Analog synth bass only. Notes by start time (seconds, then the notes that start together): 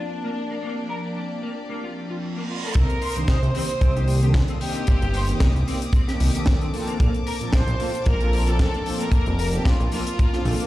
2.75 C2
3.16 C2
3.28 C2
3.42 C2
3.81 C2
4.88 G1
5.02 G1
5.40 C2
5.55 C2
6.20 C2
7.00 A#1
7.41 A#1
7.53 A#1
7.68 A#1
8.06 A#1
9.12 F1
9.27 F1
9.65 A#1
9.80 A#1
10.45 A#1